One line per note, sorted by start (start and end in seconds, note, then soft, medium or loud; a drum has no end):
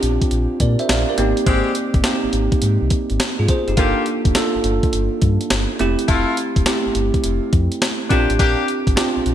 0.00 0.19 A#1 loud
0.00 1.18 C4 medium
0.00 1.20 D4 medium
0.00 1.20 F4 medium
0.00 1.19 G4 loud
0.00 closed hi-hat medium
0.22 kick medium
0.22 closed hi-hat soft
0.31 0.47 A#1 loud
0.31 closed hi-hat medium
0.60 0.76 A#2 loud
0.60 0.79 A#4 soft
0.60 0.79 D5 medium
0.60 kick medium
0.60 closed hi-hat medium
0.79 0.89 C5 medium
0.79 0.89 E5 medium
0.79 closed hi-hat soft
0.89 1.05 A#1 medium
0.89 1.08 D5 medium
0.89 1.08 F5 medium
0.89 snare loud
0.89 closed hi-hat medium
1.09 1.36 A#4 medium
1.09 1.36 D5 medium
1.18 1.34 G#1 loud
1.18 1.91 A#3 medium
1.18 1.91 C4 medium
1.18 1.91 D#4 medium
1.18 1.92 G4 medium
1.18 closed hi-hat medium
1.37 closed hi-hat medium
1.46 1.63 G#1 loud
1.46 1.74 G#3 medium
1.46 1.74 C4 medium
1.46 1.74 G4 loud
1.46 kick loud
1.46 closed hi-hat medium
1.75 closed hi-hat medium
1.94 2.03 G1 medium
1.94 kick loud
1.94 closed hi-hat soft
2.04 2.93 A#3 medium
2.04 2.93 C4 medium
2.04 2.94 D#4 medium
2.04 2.94 G4 medium
2.04 snare loud
2.04 closed hi-hat medium
2.24 2.28 G#1 soft
2.33 2.49 G#1 medium
2.33 closed hi-hat medium
2.52 kick medium
2.52 closed hi-hat medium
2.62 2.78 G#2 loud
2.62 closed hi-hat medium
2.82 2.90 C2 medium
2.90 kick medium
2.90 closed hi-hat medium
3.10 3.19 G#1 medium
3.10 closed hi-hat soft
3.20 snare loud
3.20 closed hi-hat medium
3.39 3.47 G#2 loud
3.39 3.49 F4 medium
3.39 3.48 G#4 medium
3.48 3.67 G#4 medium
3.48 3.67 C5 medium
3.48 kick medium
3.48 closed hi-hat medium
3.68 3.76 F#1 medium
3.68 3.96 D#4 medium
3.68 3.95 G4 medium
3.68 closed hi-hat medium
3.77 3.93 G1 loud
3.77 4.05 A#3 medium
3.77 4.26 A#3 medium
3.77 4.26 D4 medium
3.77 4.05 F4 medium
3.77 4.26 F4 medium
3.77 4.05 G4 loud
3.77 4.27 A4 medium
3.77 kick loud
3.77 closed hi-hat medium
4.06 closed hi-hat medium
4.25 4.34 F1 medium
4.25 kick medium
4.25 closed hi-hat medium
4.35 5.24 A#3 medium
4.35 5.24 D4 medium
4.35 5.25 F4 medium
4.35 5.25 A4 medium
4.35 snare loud
4.35 closed hi-hat medium
4.55 4.59 G1 soft
4.64 4.80 G1 loud
4.64 closed hi-hat medium
4.83 kick medium
4.83 closed hi-hat medium
4.93 5.09 G1 medium
4.93 closed hi-hat medium
5.22 5.38 G2 loud
5.22 kick medium
5.22 closed hi-hat medium
5.41 closed hi-hat soft
5.50 5.67 G1 medium
5.50 snare loud
5.50 closed hi-hat medium
5.79 5.96 F1 loud
5.79 6.52 A3 medium
5.79 6.53 C4 medium
5.79 6.53 E4 medium
5.79 6.53 G4 loud
5.79 closed hi-hat medium
5.99 closed hi-hat medium
6.08 6.25 F1 loud
6.08 6.36 A3 medium
6.08 6.36 E4 medium
6.08 6.36 F4 loud
6.08 kick loud
6.08 closed hi-hat medium
6.37 closed hi-hat medium
6.56 6.65 E1 medium
6.56 kick medium
6.56 closed hi-hat soft
6.66 7.55 A3 medium
6.66 7.55 C4 medium
6.66 7.55 E4 medium
6.66 7.56 G4 medium
6.66 snare loud
6.66 closed hi-hat medium
6.86 6.90 G1 soft
6.95 7.11 G1 medium
6.95 closed hi-hat medium
7.14 kick medium
7.14 closed hi-hat medium
7.24 7.40 F1 loud
7.24 closed hi-hat medium
7.53 7.69 F2 medium
7.53 kick medium
7.53 closed hi-hat medium
7.72 closed hi-hat soft
7.82 snare loud
7.82 closed hi-hat medium
8.10 8.26 A#1 loud
8.10 8.31 A#3 medium
8.10 8.83 C4 medium
8.10 8.31 D4 medium
8.10 8.83 D4 medium
8.10 8.84 F4 medium
8.10 8.31 G4 medium
8.10 8.84 G4 loud
8.10 kick medium
8.10 closed hi-hat medium
8.30 8.38 A1 medium
8.30 closed hi-hat medium
8.39 8.55 A#1 loud
8.39 8.66 A#3 medium
8.39 8.66 D4 medium
8.39 8.66 G4 loud
8.39 kick loud
8.39 closed hi-hat medium
8.68 closed hi-hat medium
8.87 8.95 G1 medium
8.87 kick medium
8.87 closed hi-hat soft
8.96 9.35 C4 medium
8.96 9.35 D4 medium
8.96 9.35 F4 medium
8.96 9.35 G4 medium
8.96 snare loud
8.96 closed hi-hat medium
9.16 9.20 A#1 soft
9.26 9.35 A#1 medium
9.26 closed hi-hat medium